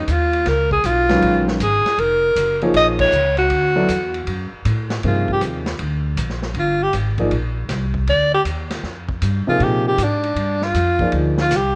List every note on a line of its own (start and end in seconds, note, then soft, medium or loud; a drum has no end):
0.07 0.45 D#2 medium
0.07 0.13 D#4 medium
0.07 hi-hat pedal medium
0.07 ride medium
0.11 0.50 F4 medium
0.33 ride soft
0.46 0.83 C#2 medium
0.46 0.72 A#4 medium
0.46 snare soft
0.46 ride medium
0.71 0.87 G#4 medium
0.71 kick medium
0.84 1.21 B1 medium
0.84 1.48 F4 medium
0.84 hi-hat pedal medium
0.84 ride medium
1.09 1.58 D#3 medium
1.09 1.58 F#3 medium
1.09 1.58 G#3 medium
1.09 1.58 C#4 medium
1.09 1.58 B4 medium
1.09 snare soft
1.09 ride soft
1.22 1.59 A#1 medium
1.22 ride medium
1.48 snare soft
1.60 1.84 G#1 medium
1.60 2.01 G#4 medium
1.60 hi-hat pedal medium
1.60 ride medium
1.85 muted upright bass stroke soft
1.85 snare soft
1.85 ride soft
1.98 2.35 F1 medium
1.98 2.62 A#4 loud
1.98 ride medium
2.36 2.73 F#1 medium
2.36 hi-hat pedal medium
2.36 ride medium
2.61 3.10 F3 medium
2.61 3.10 A#3 medium
2.61 3.11 D#4 medium
2.61 3.10 G#4 medium
2.61 3.11 C#5 medium
2.61 ride soft
2.74 3.11 A#1 medium
2.74 2.87 D#5 loud
2.74 ride medium
2.99 3.36 C#5 loud
2.99 kick loud
2.99 crash medium
3.12 3.49 C#2 medium
3.12 hi-hat pedal medium
3.37 4.48 F#4 medium
3.37 ride soft
3.50 3.87 D2 medium
3.50 ride medium
3.76 3.87 F#3 medium
3.76 3.87 B3 medium
3.76 3.87 E4 medium
3.76 3.87 A4 medium
3.76 3.88 D5 medium
3.88 4.26 E2 medium
3.88 hi-hat pedal medium
3.88 ride medium
4.14 ride soft
4.27 4.50 F#2 medium
4.27 ride medium
4.52 muted upright bass stroke soft
4.65 5.02 A2 medium
4.65 hi-hat pedal medium
4.65 ride medium
4.90 snare medium
4.90 ride soft
5.03 5.40 G2 medium
5.03 5.62 C3 medium
5.03 5.62 F3 soft
5.03 5.62 A#3 soft
5.03 5.62 D#4 soft
5.03 5.28 F4 medium
5.03 5.62 G#4 medium
5.03 ride medium
5.28 5.42 G4 medium
5.28 kick soft
5.41 5.78 D#2 medium
5.41 hi-hat pedal medium
5.41 ride medium
5.66 snare medium
5.66 ride soft
5.79 6.16 D2 medium
5.79 ride medium
6.17 6.54 A#1 medium
6.17 hi-hat pedal medium
6.17 ride medium
6.30 snare soft
6.43 snare soft
6.54 6.92 G1 medium
6.54 ride medium
6.59 6.84 F4 medium
6.83 6.94 G4 medium
6.93 7.30 G#1 medium
6.93 hi-hat pedal medium
6.93 ride medium
7.18 7.30 F3 medium
7.18 7.30 A#3 medium
7.18 7.31 D#4 medium
7.18 7.31 G#4 medium
7.18 7.31 D5 medium
7.18 kick soft
7.18 ride soft
7.31 7.68 A#1 medium
7.31 ride medium
7.69 8.06 C2 medium
7.69 snare soft
7.69 hi-hat pedal medium
7.69 ride medium
7.94 kick medium
8.07 8.44 D2 medium
8.07 8.32 D5 medium
8.07 ride medium
8.34 8.41 G4 medium
8.45 8.82 D#2 medium
8.45 hi-hat pedal medium
8.45 ride medium
8.70 snare soft
8.70 ride medium
8.83 9.20 F2 medium
8.83 snare soft
9.08 kick medium
9.21 9.45 G2 medium
9.21 hi-hat pedal medium
9.21 ride medium
9.47 9.95 C3 medium
9.47 9.96 F3 medium
9.47 9.96 A#3 medium
9.47 9.96 D#4 medium
9.47 9.64 F4 medium
9.47 9.96 G#4 medium
9.47 muted upright bass stroke soft
9.60 9.97 A#2 medium
9.60 9.87 G4 medium
9.60 ride medium
9.88 10.05 G4 medium
9.98 10.35 G#2 medium
9.98 hi-hat pedal medium
9.98 ride medium
10.03 10.65 D4 medium
10.23 ride soft
10.35 10.73 G2 medium
10.35 ride medium
10.62 11.13 F4 medium
10.62 snare soft
10.74 11.11 F2 medium
10.74 hi-hat pedal medium
10.74 ride medium
10.99 11.48 F3 medium
10.99 11.48 A#3 medium
10.99 11.48 D#4 medium
10.99 11.48 G#4 medium
10.99 11.49 D5 medium
10.99 kick medium
11.12 11.49 D2 medium
11.12 ride medium
11.37 11.57 F4 medium
11.37 snare medium
11.50 11.75 C2 medium
11.50 snare soft
11.50 hi-hat pedal medium
11.50 ride medium
11.56 11.75 G4 medium